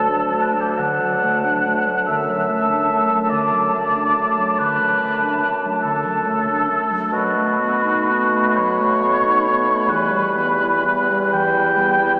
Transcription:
Already playing: bassoon D2, french horn F#3, clarinet A3, oboe A4, flute A5
0.09 clarinet D4
0.31 clarinet A3
0.41 oboe B4
0.53 clarinet F#3, oboe A4
0.60 oboe G4
0.70 oboe A4
0.79 clarinet D3, oboe F#5
1.01 clarinet F#3
1.23 clarinet A3
1.45 clarinet D4
1.67 clarinet A3
1.87 clarinet F#3
2.06 bassoon F#2, clarinet D3, french horn A3, oboe E5, flute A5
2.29 clarinet F#3
2.49 clarinet A3
2.69 clarinet D4
2.90 clarinet A3
3.10 clarinet F#3
3.29 clarinet D3, oboe D5
3.52 clarinet F#3
3.75 clarinet A3
3.96 clarinet D4
4.16 clarinet A3
4.38 clarinet F#3
4.59 clarinet D3, oboe B4
4.80 clarinet F#3
5.02 clarinet A3
5.22 clarinet D4
5.44 clarinet A3
5.65 clarinet F#3
5.82 clarinet D3, oboe A4
6.06 clarinet F#3
6.27 clarinet A3
6.49 clarinet D4
6.69 clarinet A3
6.91 clarinet F#3
7.12 bassoon B2, clarinet F#3, french horn A3, oboe F#4, flute B5
7.35 clarinet A3
7.60 clarinet B3
7.84 clarinet D#4
8.10 clarinet B3
8.35 clarinet A3
8.57 clarinet F#3, oboe C#5
8.81 clarinet A3
9.03 clarinet B3
9.25 clarinet D#4
9.48 clarinet B3
9.68 clarinet A3
9.89 bassoon E2, clarinet E3, french horn G3, oboe B4
10.13 clarinet G3
10.36 clarinet B3
10.60 clarinet E4
10.84 clarinet B3
11.09 clarinet G3
11.33 clarinet E3, oboe G5
11.57 clarinet G3
11.77 clarinet B3
11.98 clarinet E4

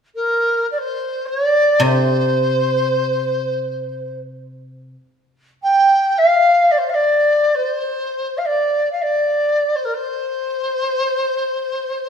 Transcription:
0.15 dizi A#4
0.71 dizi D5
0.78 dizi C5
1.26 dizi C#5
1.46 dizi D5
1.80 guzheng C3, dizi C5
5.62 dizi G5
6.18 dizi F5
6.71 dizi D5
6.78 dizi C5
6.89 dizi F5
6.94 dizi D5
7.54 dizi C5
8.37 dizi F5
8.46 dizi D5
8.91 dizi F5
9.01 dizi D5
9.75 dizi C5
9.84 dizi A#4
9.94 dizi C5

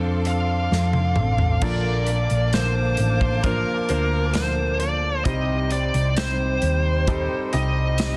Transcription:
Already playing: picked electric bass F2, steel-string acoustic guitar F3 C4 D4 A4, grand piano C4 D4 F4 A4, string section A4 F5 C6 D6
0.25 lead electric guitar F5, closed hi-hat
0.71 picked electric bass F2, steel-string acoustic guitar F3 C4 D4 A4, snare
0.93 high tom
1.16 picked electric bass A1, steel-string acoustic guitar D4 A4, mid tom
1.20 steel-string acoustic guitar C4
1.38 floor tom
1.61 picked electric bass A#1, grand piano A#2 A#3 D4 F4 A4 A#4, steel-string acoustic guitar A#2 D3 F3 A#3 D4 A4, string section A#3 F5 A5 D6, lead electric guitar D5, kick, crash
2.06 steel-string acoustic guitar F3 A#3 D4 A4, closed hi-hat
2.30 picked electric bass A#1, closed hi-hat
2.53 steel-string acoustic guitar D3 F3 A#3 D4 A4, lead electric guitar C5, snare, closed hi-hat, tambourine
2.97 picked electric bass A1, closed hi-hat
3.21 kick
3.43 steel-string acoustic guitar F3 A#3 D4, grand piano A#3 D4 F4 A#4 C5, lead electric guitar A#4, kick, closed hi-hat
3.89 picked electric bass D2, steel-string acoustic guitar F3 A#3 D4, grand piano A#3 D4 F4 A#4 C5, closed hi-hat
4.34 steel-string acoustic guitar A#2 D3 F3 A#3 D4 A4, lead electric guitar C5, snare, closed hi-hat, tambourine
4.80 steel-string acoustic guitar F3 A#3 D4 A4, lead electric guitar D5, closed hi-hat
5.25 picked electric bass C2, steel-string acoustic guitar C3 G3 C4 D#4 G4, grand piano C3 G3 C4 D#4 G4 C5, string section C5 G5, lead electric guitar D#5, kick, closed hi-hat
5.71 steel-string acoustic guitar C4 D#4 G4, lead electric guitar D5, closed hi-hat
5.94 picked electric bass C2, closed hi-hat
6.16 steel-string acoustic guitar C3 G3 C4 D#4 G4, lead electric guitar C5, snare, closed hi-hat, tambourine
6.62 picked electric bass D#2, closed hi-hat
7.07 steel-string acoustic guitar G3 D#4 G4, grand piano G3 C4 D#4 G4 A4, kick, closed hi-hat
7.52 picked electric bass C2, grand piano G3 C4 D#4 G4 D#5, steel-string acoustic guitar C4 D#4 G4, lead electric guitar D#5, closed hi-hat
7.98 steel-string acoustic guitar C3 G3 C4 D#4 G4, snare, closed hi-hat, tambourine

